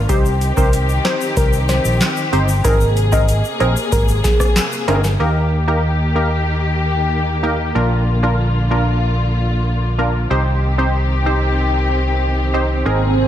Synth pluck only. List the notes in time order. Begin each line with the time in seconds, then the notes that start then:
0.09 G4
0.57 A#4
1.05 C5
1.37 A#4
1.69 C5
2.65 A#4
3.13 D#5
3.60 C5
3.92 A#4
4.24 G#4
4.88 A#4